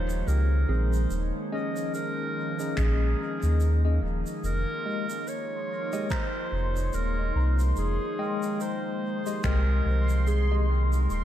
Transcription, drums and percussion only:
0.10 shaker medium
0.28 shaker medium
0.93 shaker medium
1.11 shaker medium
1.76 shaker medium
1.94 shaker medium
2.60 shaker medium
2.77 finger snap medium
2.77 kick loud
2.77 shaker medium
3.43 shaker medium
3.60 shaker medium
4.27 shaker medium
4.44 shaker medium
5.10 shaker medium
5.27 shaker medium
5.93 shaker medium
6.10 finger snap medium
6.10 kick loud
6.10 shaker medium
6.76 shaker medium
6.93 shaker medium
7.59 shaker medium
7.76 shaker medium
8.43 shaker medium
8.61 shaker medium
9.26 shaker medium
9.44 finger snap medium
9.44 kick loud
9.44 shaker medium
10.09 shaker medium
10.27 shaker medium
10.93 shaker medium
11.10 shaker medium

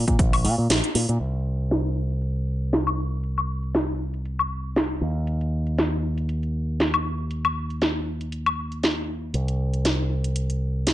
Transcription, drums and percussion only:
0.08 kick medium
0.08 closed hi-hat medium
0.19 kick loud
0.19 closed hi-hat medium
0.33 open hi-hat medium
0.33 high woodblock medium
0.45 open hi-hat loud
0.70 snare loud
0.70 closed hi-hat medium
0.84 closed hi-hat soft
0.95 open hi-hat loud
1.09 closed hi-hat soft
1.60 closed hi-hat soft
1.71 snare loud
1.71 closed hi-hat medium
2.10 closed hi-hat soft
2.22 closed hi-hat medium
2.36 closed hi-hat soft
2.73 snare loud
2.73 closed hi-hat medium
2.87 high woodblock medium
3.24 closed hi-hat medium
3.38 closed hi-hat soft
3.38 high woodblock soft
3.63 closed hi-hat soft
3.74 snare loud
3.74 closed hi-hat medium
4.14 closed hi-hat soft
4.25 closed hi-hat medium
4.39 closed hi-hat soft
4.39 high woodblock medium
4.76 snare loud
4.76 closed hi-hat medium
5.27 closed hi-hat medium
5.41 closed hi-hat soft
5.67 closed hi-hat soft
5.78 snare loud
5.78 closed hi-hat medium
6.18 closed hi-hat soft
6.29 closed hi-hat medium
6.43 closed hi-hat soft
6.80 snare loud
6.80 closed hi-hat medium
6.94 high woodblock medium
7.31 closed hi-hat medium
7.45 closed hi-hat soft
7.45 high woodblock medium
7.70 closed hi-hat soft
7.82 snare loud
7.82 closed hi-hat medium
8.21 closed hi-hat soft
8.32 closed hi-hat medium
8.46 closed hi-hat soft
8.46 high woodblock medium
8.72 closed hi-hat soft
8.83 snare loud
8.83 closed hi-hat medium
9.34 closed hi-hat medium
9.48 closed hi-hat soft
9.74 closed hi-hat soft
9.85 snare medium
9.85 closed hi-hat medium
10.24 closed hi-hat soft
10.36 closed hi-hat medium
10.50 closed hi-hat soft
10.87 snare loud
10.87 closed hi-hat medium

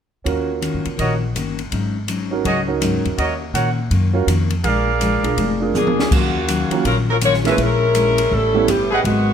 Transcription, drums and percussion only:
0.26 kick soft
0.26 ride soft
0.62 hi-hat pedal soft
0.62 ride medium
0.85 ride soft
0.99 kick soft
0.99 ride medium
1.36 hi-hat pedal soft
1.36 ride medium
1.59 ride soft
1.72 kick soft
1.72 ride soft
2.08 hi-hat pedal medium
2.08 ride medium
2.45 kick soft
2.45 ride soft
2.82 hi-hat pedal medium
2.82 ride medium
3.05 ride soft
3.18 kick soft
3.18 ride soft
3.55 hi-hat pedal soft
3.55 ride medium
3.91 kick soft
3.91 ride soft
4.28 hi-hat pedal soft
4.28 ride medium
4.50 ride soft
4.64 kick soft
4.64 ride medium
5.01 hi-hat pedal medium
5.01 ride medium
5.24 ride soft
5.38 kick soft
5.38 ride medium
5.75 hi-hat pedal medium
5.75 mid tom soft
5.87 mid tom soft
5.99 snare medium
6.11 kick medium
6.11 crash medium
6.48 hi-hat pedal medium
6.48 ride medium
6.71 ride soft
6.85 kick soft
6.85 ride medium
7.21 hi-hat pedal medium
7.21 ride medium
7.34 snare soft
7.45 snare soft
7.45 ride soft
7.58 kick soft
7.58 ride medium
7.95 hi-hat pedal medium
7.95 ride medium
8.18 ride medium
8.32 kick soft
8.68 hi-hat pedal medium
8.68 ride medium
9.05 kick soft
9.05 ride soft

